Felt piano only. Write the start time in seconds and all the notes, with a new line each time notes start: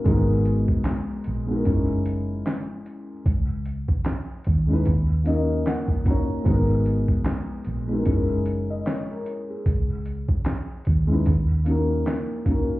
0.04 G#3 A#3 D#4
0.09 B3 F#4 A#4
1.47 G#3 B3 D#4
1.51 F#4 A#4
1.64 G#3 C#4 D#4
1.68 E4 A#4
4.67 G#3 C#4 D#4
4.72 E4 B4
5.24 A#3 C#4 D#4 D#5
5.28 F#4 A#4
5.67 F#5
6.05 A#3 C#4 D#4 A#5
6.09 F#4 C#5
6.44 G#3 B3 D#4
6.48 F#4 A#4
7.88 G#3 B3 D#4
7.92 F#4 A#4
8.04 G#3 C#4 D#4
8.08 E4 A#4
8.70 D#5
8.86 C#5
9.11 A#4
9.50 G#4
11.07 G#3 C#4 D#4
11.12 E4 B4
11.65 A#3 C#4 D#4
11.69 F#4 A#4
12.45 A#3 C#4 D#4
12.49 F#4 A#4